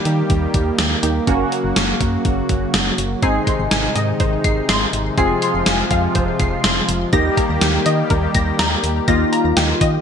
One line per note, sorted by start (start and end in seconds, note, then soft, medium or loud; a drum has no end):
0.00 1.26 D#3 medium
0.00 1.26 G3 medium
0.00 1.00 A#3 medium
0.00 3.19 A#3 medium
0.00 1.00 D#4 medium
0.00 1.00 G4 medium
0.00 1.26 G4 medium
0.05 0.23 D#3 loud
0.05 closed hi-hat medium
0.30 0.47 D#2 loud
0.30 kick loud
0.30 closed hi-hat medium
0.54 0.71 D#2 loud
0.54 kick medium
0.54 closed hi-hat medium
0.79 0.96 D#2 loud
0.79 snare loud
0.79 closed hi-hat medium
1.03 1.20 D#2 loud
1.03 1.26 A#3 medium
1.03 1.27 D#4 medium
1.03 1.27 G4 medium
1.03 closed hi-hat medium
1.27 1.45 F#1 loud
1.27 3.21 C#3 medium
1.27 3.20 F#3 medium
1.27 3.19 A#3 medium
1.27 3.19 C#4 medium
1.27 3.21 F#4 medium
1.27 3.19 F#4 medium
1.27 kick loud
1.27 closed hi-hat medium
1.52 closed hi-hat medium
1.64 1.73 F#1 loud
1.76 1.93 F#1 loud
1.76 snare loud
1.76 closed hi-hat medium
2.01 2.18 F#2 loud
2.01 kick medium
2.01 closed hi-hat medium
2.25 2.42 F#1 loud
2.25 kick loud
2.25 closed hi-hat medium
2.49 2.67 F#1 loud
2.49 kick medium
2.49 closed hi-hat medium
2.74 2.91 F#1 loud
2.74 snare loud
2.74 closed hi-hat medium
2.98 3.15 F#1 loud
2.98 closed hi-hat medium
3.22 3.40 G#1 loud
3.22 7.09 C3 medium
3.22 5.16 D#3 medium
3.22 7.09 G#3 medium
3.22 5.14 C4 medium
3.22 5.14 D#4 medium
3.22 5.16 D#4 medium
3.22 5.14 G#4 medium
3.22 3.38 C7 loud
3.22 kick loud
3.22 closed hi-hat medium
3.47 3.62 C6 medium
3.47 kick medium
3.47 closed hi-hat medium
3.59 3.68 G#1 loud
3.71 3.88 G#1 medium
3.71 3.86 G#5 medium
3.71 snare loud
3.71 closed hi-hat medium
3.96 4.13 G#2 loud
3.96 4.11 D#5 medium
3.96 closed hi-hat medium
4.20 4.37 G#1 loud
4.20 4.35 C5 medium
4.20 kick loud
4.20 closed hi-hat medium
4.44 4.62 G#1 medium
4.44 4.60 C7 medium
4.44 kick medium
4.44 closed hi-hat medium
4.69 4.86 G#1 loud
4.69 4.84 C6 loud
4.69 snare loud
4.69 closed hi-hat medium
4.93 5.10 G#1 loud
4.93 closed hi-hat medium
5.17 5.35 F1 loud
5.17 7.11 F3 medium
5.17 7.09 C4 medium
5.17 7.11 F4 medium
5.17 7.09 F4 medium
5.17 7.09 G#4 medium
5.17 5.33 C7 loud
5.17 kick loud
5.17 closed hi-hat medium
5.42 5.57 C6 medium
5.42 closed hi-hat medium
5.54 5.63 F1 loud
5.66 5.84 F1 loud
5.66 5.82 G#5 medium
5.66 snare loud
5.66 closed hi-hat medium
5.91 6.08 F2 loud
5.91 6.06 F5 medium
5.91 kick medium
5.91 closed hi-hat medium
6.15 6.32 F1 loud
6.15 6.30 C5 medium
6.15 kick loud
6.15 closed hi-hat medium
6.40 6.57 F1 loud
6.40 6.55 C7 medium
6.40 kick medium
6.40 closed hi-hat medium
6.64 6.81 F1 loud
6.64 6.79 C6 loud
6.64 snare loud
6.64 closed hi-hat medium
6.88 7.06 F1 loud
6.88 closed hi-hat medium
7.13 7.30 D#2 loud
7.13 10.01 D#3 medium
7.13 10.01 G3 medium
7.13 10.01 A#3 medium
7.13 9.04 A#3 medium
7.13 9.04 D#4 medium
7.13 9.04 G4 medium
7.13 10.01 G4 medium
7.13 7.28 A#6 loud
7.13 kick loud
7.13 closed hi-hat medium
7.37 7.52 A#5 medium
7.37 kick medium
7.37 closed hi-hat medium
7.49 7.58 D#2 medium
7.61 7.79 D#2 loud
7.61 7.77 G5 medium
7.61 snare loud
7.61 closed hi-hat medium
7.86 8.03 D#3 medium
7.86 8.01 D#5 medium
7.86 closed hi-hat medium
8.10 8.28 D#2 loud
8.10 8.26 A#4 medium
8.10 kick loud
8.10 closed hi-hat medium
8.35 8.52 D#2 loud
8.35 8.50 A#6 medium
8.35 kick medium
8.35 closed hi-hat medium
8.59 8.76 D#2 loud
8.59 8.74 A#5 medium
8.59 snare loud
8.59 closed hi-hat medium
8.83 9.01 D#2 loud
8.83 closed hi-hat medium
9.08 9.25 D#2 loud
9.08 10.01 A#3 medium
9.08 10.01 D#4 medium
9.08 10.01 F4 medium
9.08 9.23 A#6 loud
9.08 kick loud
9.08 closed hi-hat medium
9.32 9.48 A#5 medium
9.32 closed hi-hat medium
9.45 9.53 D#2 loud
9.57 9.74 D#2 loud
9.57 9.72 G5 medium
9.57 snare loud
9.57 closed hi-hat medium
9.81 9.98 D#3 medium
9.81 9.96 D#5 medium
9.81 kick medium
9.81 closed hi-hat medium